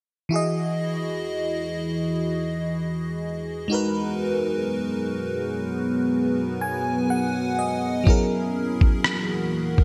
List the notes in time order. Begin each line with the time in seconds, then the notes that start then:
0.29 E3 E4 F#4 G#4 D#5
0.34 G#4 D#5
3.68 F#3 G#3 B3 D#4 F#4
3.72 A#4 B4
6.61 G#5
7.10 F#5
7.59 D#5
8.04 E3 F#3 A#3 C#4 E4 F#4, kick
8.08 G#4 A#4
8.81 kick
9.04 cross-stick
9.78 kick